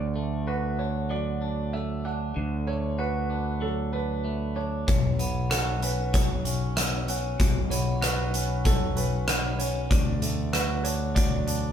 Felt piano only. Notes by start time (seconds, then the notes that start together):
Already playing: D5
0.47 B4
0.79 C#5
1.11 D5
1.73 E5
2.05 F#5
2.67 C#5
2.99 B4
3.62 A4
3.93 B4
4.56 C#5
4.88 C#5
5.51 A4
5.82 B4
6.14 C#5
6.77 E5
7.09 F#5
7.71 C#5
8.02 B4
8.65 A4
8.97 B4
9.59 C#5
9.90 D5
10.53 B4
10.84 C#5
11.15 D5